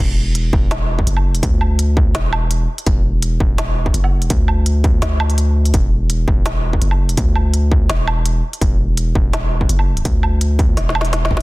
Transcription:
0.00 E1
0.35 closed hi-hat
0.53 E1, kick
0.71 snare, closed hi-hat, low woodblock
0.99 kick
1.07 F#1, closed hi-hat
1.17 low woodblock
1.35 closed hi-hat
1.43 D2, kick, closed hi-hat
1.61 low woodblock
1.79 closed hi-hat
1.97 kick
2.15 E1, snare, closed hi-hat
2.33 low woodblock
2.51 closed hi-hat
2.78 closed hi-hat
2.86 E1, kick, closed hi-hat
3.22 closed hi-hat
3.40 kick
3.58 snare, closed hi-hat, low woodblock
3.86 kick
3.94 F#1, closed hi-hat
4.04 low woodblock
4.22 closed hi-hat
4.30 D2, kick, closed hi-hat
4.48 low woodblock
4.66 closed hi-hat
4.84 kick, closed hi-hat
5.02 D2, snare, closed hi-hat
5.20 low woodblock
5.30 closed hi-hat
5.38 closed hi-hat
5.65 closed hi-hat
5.74 E1, kick, closed hi-hat
6.10 closed hi-hat
6.28 E1, kick
6.46 snare, closed hi-hat, low woodblock
6.73 kick
6.82 F#1, closed hi-hat
6.91 low woodblock
7.09 closed hi-hat
7.17 D2, kick, closed hi-hat
7.36 low woodblock
7.54 closed hi-hat
7.72 kick
7.90 E1, snare, closed hi-hat
8.08 low woodblock
8.26 closed hi-hat
8.53 closed hi-hat
8.61 E1, kick, closed hi-hat
8.97 closed hi-hat
9.15 E1, kick
9.33 snare, closed hi-hat, low woodblock
9.61 kick
9.69 F#1, closed hi-hat
9.79 low woodblock
9.97 closed hi-hat
10.05 D2, kick, closed hi-hat
10.23 low woodblock
10.41 closed hi-hat
10.59 kick, closed hi-hat
10.77 E1, snare, closed hi-hat
10.89 snare
10.95 low woodblock
11.01 snare, closed hi-hat
11.13 snare, closed hi-hat
11.25 snare
11.31 E1, kick
11.37 snare

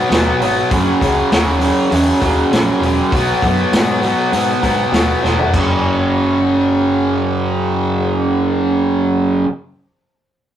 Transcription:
0.09 D#2 B2 F#3 B3, snare, open hi-hat
0.40 G#1 B2 F#3 B3, open hi-hat
0.70 F#1 F#2 C#3 F#3, kick, open hi-hat
1.01 C#2 F#2 C#3 F#3, kick, open hi-hat
1.31 D#2 F#2 C#3 F#3, snare, open hi-hat
1.60 F#2 C#3 F#3, open hi-hat
1.90 E2 F#2 C#3 F#3, open hi-hat
2.21 D#2 F#2 C#3 F#3, kick, open hi-hat
2.51 A#1 F#2 C#3 F#3, snare, open hi-hat
2.80 E1 F#2, open hi-hat
2.84 C#3 F#3
3.12 B1 B2 F#3 B3, kick, open hi-hat
3.42 F#2 B2 F#3 B3, kick, open hi-hat
3.72 G#2 B2 F#3 B3, snare, open hi-hat
4.02 B2 F#3 B3, open hi-hat
4.32 G#2 B2 F#3 B3, open hi-hat
4.62 G#2 B2 F#3 B3, kick, open hi-hat
4.92 D#2 B2 F#3 B3, snare, open hi-hat
5.22 E1 B2 F#3 B3, snare
5.39 floor tom
5.53 F#1 F#2 C#3 F#3, kick, crash

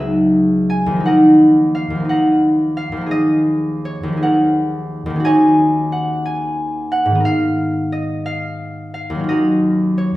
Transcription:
Already playing: C#2 F#3 G#3 B3 D#4 C#5 D#5 E5
0.00 G#4 B4
0.70 G#5
0.86 D#2
0.91 F3
0.96 A#3
1.00 D#4
1.05 A#4 D#5 F#5
1.75 F5
1.90 D#2
1.95 F3
2.00 A#3
2.05 D#4
2.09 A#4 D#5 F#5
2.77 F5
2.92 D#2
2.97 F3
3.01 A#3
3.06 G#4
3.11 D#5
3.85 C#5
4.03 D#2
4.08 F3
4.13 A#3
4.17 G#4
4.23 A#4 C#5 F#5
5.06 D#2
5.10 D#3
5.16 C#4
5.20 F#4
5.25 C#5 D#5 G#5
5.92 F#5
6.26 G#5
6.92 F#5
7.05 G#2
7.10 D#3
7.15 B3
7.20 A#4
7.25 F5
7.92 D#5
8.26 F5
8.94 F5
9.10 D#2
9.15 F#3
9.20 C#4
9.24 F4
9.29 F#4 A#4 D#5
9.98 C#5

